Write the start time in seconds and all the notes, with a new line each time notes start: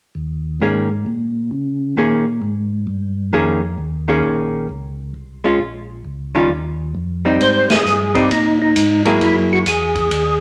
0.15 D#2
0.60 G#2 D#3 A#3 C#4 G#4
1.06 A#2
1.51 C#3
1.97 A#2 D#3 A#3 C#4 G#4
2.42 G#2
2.87 G2
3.33 F2 D#3 A#3 C#4 G#4
3.78 D#2
4.08 D#3 A#3 C#4 G#4
4.23 A#1
4.69 C#2
5.14 C2
5.44 G#3 C#4 F4
5.59 A#1
6.05 C#2
6.35 D#3 G3 C#4 F4
6.49 D#2
6.95 F2
7.25 G3 C4 D#4
7.40 G#2 C5, kick, ride
7.69 G#2 G#4, snare, ride
7.84 G2, hi-hat pedal
8.15 G3 C4 D#4 G4, kick, ride
8.30 A#2 D#4, kick, ride
8.62 D#4
8.76 G#2, kick, hi-hat pedal, ride
9.05 F#3 A#3 E4 G#4, ride
9.21 F#2 E4, kick, ride
9.53 F#4
9.66 E2 G#4, kick, hi-hat pedal, ride
9.95 kick, ride
10.11 D#2, kick, ride